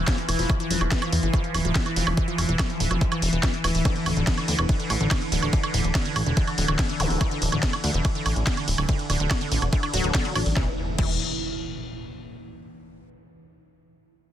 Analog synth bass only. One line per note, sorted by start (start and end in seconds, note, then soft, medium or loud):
0.29 0.35 E1 loud
0.39 0.46 E1 medium
0.71 0.77 E1 medium
0.81 0.88 E1 medium
1.12 1.19 E2 medium
1.23 1.30 G1 medium
1.54 1.61 D1 loud
1.65 1.72 D1 medium
1.96 2.03 E1 medium
2.07 2.14 E1 medium
2.38 2.45 E1 loud
2.49 2.56 E1 medium
2.80 2.87 D1 medium
2.91 2.98 F1 medium
3.22 3.29 E1 loud
3.33 3.39 E1 medium
3.64 3.71 D1 loud
3.75 3.81 D1 medium
4.06 4.13 D1 loud
4.17 4.23 D1 medium
4.48 4.55 D2 loud
4.59 4.65 E1 medium
4.90 4.97 A1 loud
5.01 5.07 A1 medium
5.32 5.39 D1 medium
5.43 5.49 D1 medium
5.74 5.81 D1 medium
5.85 5.91 D1 medium
6.16 6.23 A1 medium
6.26 6.33 E1 medium
6.58 6.65 D1 loud
6.68 6.75 D1 medium
7.00 7.07 D1 loud
7.10 7.17 D1 medium
7.42 7.49 D1 loud
7.52 7.59 D1 medium
7.84 7.91 D2 loud
7.94 8.01 E1 medium
8.26 8.32 A1 loud
8.36 8.43 A1 medium
8.68 8.74 D1 medium
8.78 8.85 D1 medium
9.10 9.16 D1 loud
9.20 9.27 D1 medium
9.52 9.58 A1 medium
9.62 9.69 E1 medium
9.94 10.00 D1 loud
10.04 10.11 D1 medium
10.36 10.42 A1 loud
10.46 10.53 A1 medium
10.57 10.68 E1 loud
10.98 11.18 E1 loud